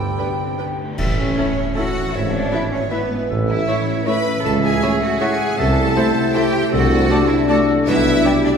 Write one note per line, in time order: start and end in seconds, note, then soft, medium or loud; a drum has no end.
0.00 0.12 G1 medium
0.00 0.12 G2 medium
0.00 1.00 G2 soft
0.00 1.00 D3 soft
0.00 0.37 D4 soft
0.00 0.59 G4 medium
0.00 0.79 B4 medium
0.00 0.59 G5 medium
0.00 0.77 G5 medium
0.18 0.37 B3 medium
0.18 1.00 B3 soft
0.18 0.26 D4 soft
0.18 0.33 D4 soft
0.18 0.26 B4 soft
0.18 0.33 B4 soft
0.18 0.27 G5 soft
0.39 0.58 C4 medium
0.39 0.78 D4 soft
0.58 0.79 B3 medium
0.58 0.66 D4 soft
0.58 0.73 D4 soft
0.58 1.00 G4 soft
0.58 0.66 B4 soft
0.58 0.73 B4 soft
0.58 0.67 G5 soft
0.79 0.98 A3 soft
0.79 1.00 D4 soft
0.98 1.31 A1 medium
0.98 2.16 A2 medium
0.98 1.35 E5 medium
0.98 concert bass drum medium
0.98 crash medium
1.09 2.04 E3 medium
1.18 1.94 A3 medium
1.18 1.72 C#4 loud
1.18 1.72 C#5 medium
1.28 1.85 C#4 medium
1.37 1.45 C#4 medium
1.37 1.52 C#4 medium
1.37 1.46 E4 medium
1.37 1.52 E4 medium
1.37 2.51 E4 medium
1.37 1.51 A4 medium
1.37 1.46 A4 medium
1.37 1.75 C#5 medium
1.37 1.46 C#5 medium
1.37 1.44 E5 medium
1.48 1.75 A4 medium
1.57 2.16 C#5 medium
1.67 2.80 E5 medium
1.75 1.84 C#4 medium
1.75 1.90 C#4 medium
1.75 1.84 E4 medium
1.75 1.90 E4 medium
1.75 2.14 F#4 medium
1.75 2.13 A4 medium
1.75 1.89 A4 medium
1.75 1.84 A4 medium
1.75 2.16 A4 medium
1.75 1.84 C#5 medium
1.75 1.83 E5 medium
1.75 2.13 F#5 medium
1.86 2.16 C#4 medium
1.95 2.16 A3 medium
2.05 2.16 E3 medium
2.14 2.46 G#1 medium
2.14 3.31 G#2 medium
2.14 2.33 E4 medium
2.14 2.94 C#5 medium
2.14 2.33 E5 medium
2.24 2.41 G#3 medium
2.33 2.99 B3 medium
2.33 2.71 D4 loud
2.33 2.72 D5 medium
2.42 3.09 G#3 medium
2.52 2.67 B3 medium
2.52 2.61 B3 medium
2.52 2.70 E4 medium
2.52 2.66 E4 medium
2.52 2.61 E4 medium
2.52 2.66 B4 medium
2.52 2.61 B4 medium
2.52 2.59 E5 medium
2.52 2.61 E5 medium
2.62 2.89 B4 medium
2.71 2.80 C#4 medium
2.71 3.67 E4 medium
2.71 2.91 C#5 medium
2.81 3.95 E5 medium
2.90 3.05 B3 medium
2.90 3.29 B3 medium
2.90 2.99 B3 medium
2.90 3.05 E4 medium
2.90 2.99 E4 medium
2.90 2.98 B4 medium
2.90 3.31 B4 medium
2.90 3.30 B4 medium
2.90 3.05 B4 medium
2.90 3.29 B4 medium
2.90 2.98 E5 medium
3.01 3.18 B3 medium
3.10 3.31 G#3 medium
3.20 3.31 B3 medium
3.29 3.62 A1 medium
3.29 4.46 A2 medium
3.29 3.67 A4 medium
3.39 4.33 E3 medium
3.49 4.24 A3 medium
3.49 4.02 E4 loud
3.49 4.02 E5 medium
3.58 4.15 C#4 medium
3.67 3.76 A3 medium
3.67 3.81 C#4 medium
3.67 4.72 E4 medium
3.67 3.82 E4 medium
3.67 3.76 E4 medium
3.67 3.76 C#5 medium
3.67 3.82 C#5 medium
3.67 4.08 C#5 medium
3.67 3.75 E5 medium
3.67 3.76 E5 medium
3.77 4.05 A4 medium
3.87 4.91 C#5 medium
3.96 5.00 E5 medium
4.05 4.14 A3 medium
4.05 4.19 C#4 medium
4.05 4.19 E4 medium
4.05 4.14 E4 medium
4.05 4.81 A4 medium
4.05 4.44 B4 loud
4.05 4.20 C#5 medium
4.05 4.15 C#5 medium
4.05 4.13 E5 medium
4.05 4.14 E5 medium
4.05 5.20 E5 medium
4.05 4.44 B5 loud
4.16 4.62 C#4 medium
4.26 4.52 A3 medium
4.34 4.46 E3 medium
4.44 4.76 C#2 medium
4.44 5.60 C#3 medium
4.44 4.63 A4 loud
4.44 4.53 A5 medium
4.54 5.48 A3 medium
4.63 5.38 C#4 medium
4.63 5.01 G#4 loud
4.63 5.01 G#5 medium
4.73 5.29 E4 medium
4.82 4.90 A3 medium
4.82 4.96 C#4 medium
4.82 4.90 E4 medium
4.82 4.96 E4 medium
4.82 5.95 A4 medium
4.82 4.90 C#5 medium
4.82 4.96 C#5 medium
4.82 4.90 E5 medium
4.82 4.89 E5 medium
4.92 5.19 C#5 medium
5.01 5.21 F#4 loud
5.01 6.14 E5 medium
5.01 5.20 F#5 medium
5.11 6.23 A5 medium
5.19 5.27 A3 medium
5.19 5.34 C#4 medium
5.19 5.28 E4 medium
5.19 5.34 E4 medium
5.19 5.58 G#4 loud
5.19 5.28 C#5 medium
5.19 5.34 C#5 medium
5.19 5.27 E5 medium
5.19 5.58 F#5 medium
5.19 5.59 G#5 loud
5.30 5.85 E4 medium
5.39 5.60 C#4 medium
5.49 5.76 A3 medium
5.58 5.90 C2 loud
5.58 5.90 C2 medium
5.58 6.71 C3 medium
5.58 7.83 A3 medium
5.58 6.68 E4 medium
5.58 6.34 A4 loud
5.58 5.96 E5 loud
5.58 6.34 A5 loud
5.67 6.61 C4 medium
5.77 6.52 A3 medium
5.86 6.05 E4 medium
5.96 6.04 A3 medium
5.96 6.04 E4 medium
5.96 6.33 A4 medium
5.96 6.04 A4 medium
5.96 6.71 C5 medium
5.96 6.10 C5 medium
5.96 6.04 E5 medium
5.96 6.04 A5 medium
6.06 6.43 E4 medium
6.15 6.74 E5 medium
6.24 7.38 A5 medium
6.34 6.42 A3 medium
6.34 6.42 E4 medium
6.34 6.72 G4 loud
6.34 6.42 A4 medium
6.34 7.09 A4 medium
6.34 6.48 C5 medium
6.34 6.41 E5 medium
6.34 6.73 G5 medium
6.34 6.42 A5 medium
6.44 6.74 E4 medium
6.53 6.90 A3 medium
6.62 7.88 C4 medium
6.72 7.04 C2 loud
6.72 7.88 C3 medium
6.72 8.57 D4 medium
6.72 7.28 F#4 loud
6.72 7.21 A4 loud
6.72 7.29 F#5 loud
6.82 7.76 F#3 medium
6.91 7.66 A3 medium
7.01 7.18 D4 medium
7.10 7.18 A3 medium
7.10 7.18 D4 medium
7.10 7.47 A4 medium
7.10 7.24 D5 medium
7.10 7.19 D5 medium
7.10 7.19 A5 medium
7.10 7.18 A5 medium
7.19 7.56 D4 medium
7.29 7.48 E4 loud
7.29 8.43 D5 medium
7.29 7.48 E5 medium
7.39 7.88 A5 medium
7.47 7.55 A3 medium
7.47 7.56 D4 medium
7.47 7.67 F#4 loud
7.47 7.88 A4 medium
7.47 7.84 A4 medium
7.47 7.62 D5 medium
7.47 7.57 D5 medium
7.47 7.56 F#5 loud
7.47 7.55 A5 medium
7.47 7.57 A5 medium
7.58 8.13 D4 medium
7.67 7.88 A3 medium
7.77 7.88 F#3 medium
7.86 8.18 B1 medium
7.86 8.18 B1 loud
7.86 8.57 B2 medium
7.86 8.57 G3 medium
7.86 8.40 E4 loud
7.86 8.24 B4 medium
7.86 8.40 E5 loud
7.96 8.57 G3 medium
8.05 8.57 B3 medium
8.15 8.57 D4 medium
8.24 8.32 B3 medium
8.24 8.32 D4 medium
8.24 8.57 G4 medium
8.24 8.38 D5 medium
8.24 8.33 D5 medium
8.24 8.31 G5 medium
8.24 8.33 G5 medium
8.34 8.57 B4 medium
8.44 8.57 D4 loud
8.44 8.57 D5 medium
8.54 8.57 G5 medium